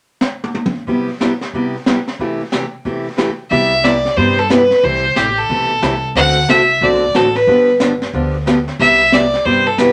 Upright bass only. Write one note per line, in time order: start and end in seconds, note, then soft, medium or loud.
3.51 4.04 C2 medium
4.17 4.70 G2 medium
4.83 5.10 C2 medium
5.16 5.44 A1 medium
5.49 5.77 B1 medium
5.82 6.10 C2 medium
6.15 6.42 D2 loud
6.49 6.77 C2 medium
6.81 7.09 B1 medium
7.15 7.43 A1 medium
7.47 8.00 G1 medium
8.13 8.66 D2 medium
8.79 9.32 C2 medium
9.46 9.92 G2 medium